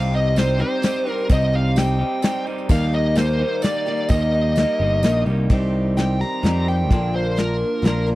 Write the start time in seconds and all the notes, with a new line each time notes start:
Already playing: C2 C3 G3 C4 D#4 G4 F5
0.11 C4 D#4 G4 D#5, tambourine
0.35 G3 C4 D#4 G4 C5, snare, closed hi-hat, tambourine
0.58 C3 G3 C4 D#4 G4 C5
0.81 G3 C4 D#4 G4, snare, closed hi-hat, tambourine
1.05 C3 G3 C4 D#4 G4, tambourine
1.10 A#4
1.18 tambourine
1.28 C2 C3 G3 C4 D#4 G4 D#5, kick, closed hi-hat, tambourine
1.41 tambourine
1.52 C4 D#4 G4 F5, tambourine
1.76 G3 C4 D#4 G4 G5, snare, closed hi-hat, tambourine
1.99 C3 G3 C4 D#4 G4
2.22 G3 C4 D#4 G4, snare, closed hi-hat, tambourine
2.46 C3 G3 C4 D#4 G4, tambourine
2.58 tambourine
2.68 D#2 D#3 G3 A#3 D#4 G4 F5, kick, crash, tambourine
2.92 A#3 D#4 G4 D#5, tambourine
3.16 G3 A#3 D#4 G4 C5, snare, closed hi-hat, tambourine
3.39 D#3 G3 A#3 D#4 G4
3.62 G3 A#3 D#4 G4 D5, snare, closed hi-hat, tambourine
3.86 D#3 G3 A#3 D#4 G4, tambourine
3.97 tambourine
4.09 D#2 D#3 G3 A#3 D#4 D#5, kick, closed hi-hat, tambourine
4.13 G4
4.32 A#3 D#4 G4, tambourine
4.56 G3 A#3 D#4 G4, snare, closed hi-hat, tambourine
4.79 G1 D#3 G3 A#3 D#4 G4
5.03 A#1 G3 A#3 D#4 G4, snare, closed hi-hat, tambourine
5.26 C2 D#3 G3 A#3 D#4 G4, tambourine
5.49 C2 C3 D#3 G3 C4 D#4 G4, kick, closed hi-hat
5.97 G3 C4 D#4 G4 G5, snare, closed hi-hat
6.21 C4 D#4 G4 A#5
6.42 F2 C3 D#3 G3 C4 D#4, snare, closed hi-hat
6.46 G4
6.68 C4 D#4 G4 G5
6.89 A#1 A#2 D3 F3 A#3 D4 A#4, kick, closed hi-hat
6.93 F4
7.15 C5
7.36 F3 A#3 D4 A#4, snare, closed hi-hat
7.82 A#1 A#2 D3 F3 A#3 D4 A#4, snare, closed hi-hat
7.87 F4
8.06 F3 A#3 D4 A#4